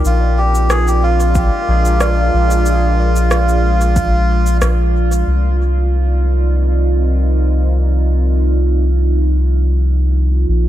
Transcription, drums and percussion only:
0.05 shaker
0.55 shaker
0.70 cross-stick, shaker
0.88 shaker
1.20 shaker
1.35 kick, shaker
1.85 shaker
2.01 cross-stick, shaker
2.51 shaker
2.66 shaker
3.16 shaker
3.31 cross-stick, shaker
3.49 shaker
3.81 shaker
3.96 kick, shaker
4.47 shaker
4.62 cross-stick, shaker
5.12 shaker

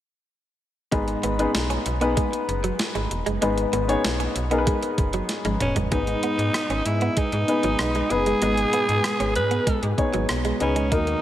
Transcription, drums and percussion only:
0.92 kick, closed hi-hat
1.08 closed hi-hat
1.23 closed hi-hat
1.39 closed hi-hat
1.55 snare, closed hi-hat
1.70 closed hi-hat
1.86 closed hi-hat
2.01 closed hi-hat
2.17 kick, closed hi-hat
2.33 closed hi-hat
2.49 closed hi-hat
2.64 closed hi-hat
2.79 snare, closed hi-hat
2.95 closed hi-hat
3.11 closed hi-hat
3.26 closed hi-hat
3.42 closed hi-hat
3.58 closed hi-hat
3.73 closed hi-hat
3.89 closed hi-hat
4.05 snare, closed hi-hat
4.20 closed hi-hat
4.36 closed hi-hat
4.51 closed hi-hat
4.67 kick, closed hi-hat
4.83 closed hi-hat
4.98 kick, closed hi-hat
5.13 closed hi-hat
5.29 snare, closed hi-hat
5.45 closed hi-hat, high tom
5.60 closed hi-hat, mid tom
5.76 closed hi-hat, floor tom
5.92 kick, closed hi-hat
6.07 closed hi-hat
6.23 closed hi-hat
6.39 closed hi-hat
6.54 cross-stick, closed hi-hat
6.70 closed hi-hat
6.86 closed hi-hat
7.01 closed hi-hat
7.17 kick, closed hi-hat
7.32 closed hi-hat
7.48 closed hi-hat
7.63 closed hi-hat
7.79 cross-stick, closed hi-hat
7.95 closed hi-hat
8.10 closed hi-hat
8.26 closed hi-hat
8.42 closed hi-hat
8.58 closed hi-hat
8.73 closed hi-hat
8.89 closed hi-hat
9.04 cross-stick, closed hi-hat
9.20 closed hi-hat
9.36 closed hi-hat
9.51 closed hi-hat
9.67 kick, closed hi-hat
9.83 closed hi-hat
9.98 kick, closed hi-hat
10.13 closed hi-hat
10.29 cross-stick, closed hi-hat
10.45 closed hi-hat
10.60 closed hi-hat
10.76 closed hi-hat
10.92 kick, closed hi-hat
11.07 closed hi-hat

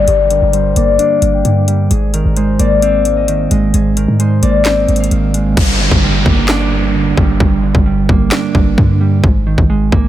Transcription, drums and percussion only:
0.08 closed hi-hat
0.31 closed hi-hat
0.53 closed hi-hat
0.76 closed hi-hat
0.99 closed hi-hat
1.22 closed hi-hat
1.45 closed hi-hat
1.68 closed hi-hat
1.91 closed hi-hat
2.14 closed hi-hat
2.37 closed hi-hat
2.60 closed hi-hat
2.82 closed hi-hat
3.05 closed hi-hat
3.28 closed hi-hat
3.51 closed hi-hat
3.74 closed hi-hat
3.97 closed hi-hat
4.20 closed hi-hat
4.43 closed hi-hat
4.65 snare, clap, closed hi-hat
4.89 closed hi-hat
4.96 closed hi-hat
5.04 closed hi-hat
5.11 closed hi-hat
5.34 closed hi-hat
5.57 kick, crash
5.91 kick
6.26 kick
6.48 snare, clap
7.17 kick
7.40 kick
7.75 kick
8.09 kick
8.32 snare, clap
8.55 kick
8.78 kick
9.24 kick
9.58 kick
9.92 kick

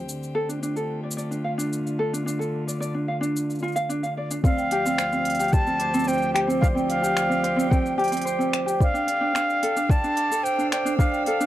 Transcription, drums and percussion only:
0.09 cabasa
0.23 cabasa
0.50 cabasa
0.63 cabasa
0.76 cabasa
1.11 cabasa
1.18 cabasa
1.32 cabasa
1.59 cabasa
1.73 cabasa
1.87 cabasa
2.14 cabasa
2.28 cabasa
2.41 cabasa
2.68 cabasa
2.82 cabasa
3.23 cabasa
3.36 cabasa
3.50 cabasa
3.59 cabasa
3.63 cabasa
3.68 cabasa
3.72 cabasa
3.76 cabasa
3.90 cabasa
4.04 cabasa
4.31 cabasa
4.44 kick, cabasa
4.58 cabasa
4.71 open hi-hat
4.86 cabasa
4.98 finger snap, cabasa
5.13 cabasa
5.25 open hi-hat
5.30 open hi-hat
5.35 open hi-hat
5.39 open hi-hat, cabasa
5.44 open hi-hat
5.48 open hi-hat
5.53 kick, cabasa
5.67 cabasa
5.80 open hi-hat
5.94 cabasa
5.99 cabasa
6.04 cabasa
6.08 cabasa
6.18 cabasa
6.22 cabasa
6.36 finger snap, open hi-hat
6.50 cabasa
6.63 kick, cabasa
6.77 cabasa
6.90 open hi-hat
7.04 cabasa
7.17 finger snap, cabasa
7.32 cabasa
7.44 open hi-hat
7.59 cabasa
7.72 kick, cabasa
7.86 cabasa
7.99 open hi-hat
8.04 open hi-hat
8.08 open hi-hat
8.12 open hi-hat, cabasa
8.17 open hi-hat
8.21 open hi-hat
8.27 cabasa
8.41 cabasa
8.53 finger snap, open hi-hat
8.68 cabasa
8.80 kick, cabasa
8.95 cabasa
9.08 open hi-hat
9.35 finger snap, cabasa
9.50 cabasa
9.63 open hi-hat
9.77 cabasa
9.90 kick, cabasa
10.04 cabasa
10.17 open hi-hat
10.32 cabasa
10.46 cabasa
10.59 cabasa
10.72 finger snap, open hi-hat
10.86 cabasa
10.99 kick, cabasa
11.14 cabasa
11.26 open hi-hat
11.41 cabasa

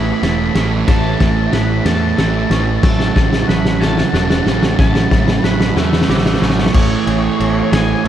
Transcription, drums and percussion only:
0.23 snare, ride
0.55 snare, ride
0.88 kick, snare, ride
1.20 kick, snare, ride
1.53 snare, ride
1.86 snare, ride
2.18 snare, ride
2.51 snare, ride
2.83 kick, snare, crash
3.00 snare
3.16 kick, snare
3.33 snare
3.49 snare
3.65 snare
3.82 snare
3.98 snare
4.14 snare
4.30 snare
4.47 snare
4.63 snare
4.79 kick, snare
4.95 snare
5.11 kick, snare
5.28 snare
5.44 snare
5.60 snare
5.77 snare
5.93 snare
6.01 snare
6.10 snare
6.18 snare
6.26 snare
6.34 snare
6.42 snare
6.50 snare
6.58 snare
6.66 snare
6.74 kick, crash
7.07 ride
7.40 ride
7.73 snare, ride

